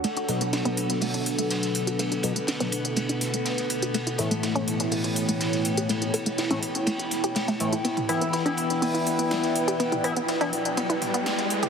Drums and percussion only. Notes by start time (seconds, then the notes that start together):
0.04 closed hi-hat, ride
0.17 closed hi-hat
0.28 snare, open hi-hat, ride
0.41 closed hi-hat, ride
0.53 snare, closed hi-hat, ride
0.65 closed hi-hat
0.77 open hi-hat, ride
0.90 snare, closed hi-hat
1.01 closed hi-hat, open hi-hat
1.14 closed hi-hat
1.26 open hi-hat, ride
1.39 closed hi-hat
1.50 snare, closed hi-hat, ride
1.63 snare, closed hi-hat
1.75 open hi-hat, ride
1.87 closed hi-hat, ride
1.99 closed hi-hat, ride
2.12 closed hi-hat
2.23 open hi-hat, ride
2.36 closed hi-hat
2.47 snare, closed hi-hat, ride
2.60 snare, closed hi-hat
2.72 open hi-hat, ride
2.85 closed hi-hat
2.96 closed hi-hat, ride
3.09 closed hi-hat
3.21 snare, open hi-hat, ride
3.34 closed hi-hat
3.45 snare, closed hi-hat, ride
3.58 snare, closed hi-hat
3.70 open hi-hat, ride
3.82 closed hi-hat
3.94 closed hi-hat, ride
4.07 closed hi-hat
4.18 snare, open hi-hat, ride
4.31 closed hi-hat, ride
4.43 snare, closed hi-hat, ride
4.56 closed hi-hat
4.68 open hi-hat, ride
4.80 snare, closed hi-hat
4.91 closed hi-hat, open hi-hat
5.04 closed hi-hat
5.16 open hi-hat, ride
5.29 closed hi-hat
5.41 snare, closed hi-hat, ride
5.53 snare, closed hi-hat
5.65 open hi-hat, ride
5.77 closed hi-hat, ride
5.89 closed hi-hat, ride
6.02 closed hi-hat
6.14 open hi-hat, ride
6.26 closed hi-hat
6.38 snare, closed hi-hat, ride
6.51 snare, closed hi-hat
6.63 open hi-hat, ride
6.75 closed hi-hat
6.87 closed hi-hat, ride
6.99 closed hi-hat
7.11 snare, open hi-hat, ride
7.24 closed hi-hat
7.35 snare, closed hi-hat, ride
7.48 snare, closed hi-hat
7.60 open hi-hat, ride
7.73 closed hi-hat
7.84 closed hi-hat, ride
7.97 closed hi-hat, mid tom
8.09 snare, open hi-hat, ride
8.21 closed hi-hat, ride
8.33 snare, closed hi-hat, ride
8.46 closed hi-hat
8.57 open hi-hat, ride
8.70 snare, closed hi-hat
8.82 closed hi-hat, open hi-hat
8.95 closed hi-hat
9.07 open hi-hat, ride
9.19 closed hi-hat
9.31 snare, closed hi-hat, ride
9.44 snare, closed hi-hat
9.56 open hi-hat, ride
9.68 closed hi-hat, ride
9.80 closed hi-hat, ride
9.92 closed hi-hat, mid tom
10.04 open hi-hat, ride
10.16 closed hi-hat
10.28 snare, closed hi-hat, ride
10.41 closed hi-hat
10.53 open hi-hat, ride
10.65 closed hi-hat
10.77 closed hi-hat, ride
10.90 closed hi-hat
11.02 snare, mid tom, open hi-hat, ride
11.14 closed hi-hat
11.26 snare, closed hi-hat, ride
11.38 snare, closed hi-hat
11.50 open hi-hat, ride
11.63 closed hi-hat, mid tom